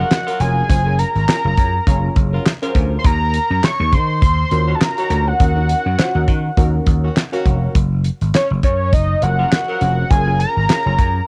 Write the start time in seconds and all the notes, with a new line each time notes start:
Already playing: F3 C#4 G#4 A#4 F#5
0.11 snare, clap, closed hi-hat
0.27 F#3 F4 A#4, closed hi-hat
0.40 F1 C#4 F4 G#4 A#4 G#5, closed hi-hat
0.69 F#1 C#4 F4 G#4 C5, kick, closed hi-hat
0.86 C#4 F4 G#4 A#4
0.99 A#5, closed hi-hat
1.15 G#1, closed hi-hat
1.28 C#4 F4 G#4 A#4, snare, clap, closed hi-hat
1.45 F#1 C#4 F4 G#4 A#4
1.57 F#2, kick, closed hi-hat
1.87 F#1 C#4 F4 G#4 C#5, kick, closed hi-hat
2.16 F#1, kick, closed hi-hat
2.33 F#3 F4 A#4
2.46 snare, clap, closed hi-hat
2.62 F#3 C#4 F4 G#4 A#4 C5, closed hi-hat
2.75 D2, kick, closed hi-hat
2.99 C6
3.05 D#2 A#5, kick, closed hi-hat
3.34 closed hi-hat
3.50 F#2
3.63 C#6, snare, clap, closed hi-hat
3.80 D#2
3.92 D#3 C6, kick, closed hi-hat
4.22 D#2, kick, closed hi-hat
4.51 D#2 C#4 F4 F#4 A#4, closed hi-hat
4.68 D#3 C#4 F#4
4.75 A5
4.81 A#5, snare, clap, closed hi-hat
4.97 D#3 C#4 F#4, closed hi-hat
5.10 D2 C#4 F4 F#4 A#4, closed hi-hat
5.28 F#5
5.40 D#2 C#4 F4 F#4 A#4, kick, closed hi-hat
5.56 C#4 D#4 F#4 A#4
5.69 closed hi-hat
5.86 F#2
5.98 C#4 F4 F#4 C5, snare, clap, closed hi-hat
6.15 D#2 C#4 D#4 F#4 A#4
6.28 D#3, kick, closed hi-hat
6.57 D#2 C#4 D#4 F#4 A#4, kick, closed hi-hat
6.86 D#2, kick, closed hi-hat
7.03 D#3 C#4 F#4
7.16 snare, clap, closed hi-hat
7.32 D#3 C#4 F#4 A#4 F5, closed hi-hat
7.46 F1, kick, closed hi-hat
7.75 F#1, kick, closed hi-hat
8.04 closed hi-hat
8.21 G#1, closed hi-hat
8.34 C#5, snare, clap, closed hi-hat
8.51 F#1
8.63 F#2 C#5, kick, closed hi-hat
8.93 F#1 D#5, kick, closed hi-hat
9.22 F#1 F3 C#4 G#4 A#4 F#5, closed hi-hat
9.39 F#3 F4 A#4
9.52 snare, clap, closed hi-hat
9.68 F3 F#3 A#4
9.81 F1 C#4 F4 G#4 A#4, closed hi-hat
10.10 F#1 C#4 F4 G#4 A#4 G#5, kick, closed hi-hat
10.27 C#4 F4 G#4 A#4
10.40 A#5, closed hi-hat
10.57 G#1
10.69 C#4 F4 G#4 A#4, snare, clap, closed hi-hat
10.85 F#1 C#4 F4 G#4 C#5
10.98 F#2, kick, closed hi-hat